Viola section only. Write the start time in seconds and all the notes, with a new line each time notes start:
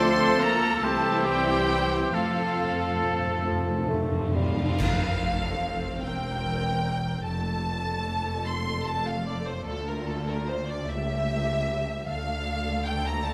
Already playing: A3 F4
0.82 C4 E4
2.13 A3 C4
4.78 C4 A4
6.04 A#4
7.26 A3 A4
9.67 F4
10.87 G4
12.07 A3 A4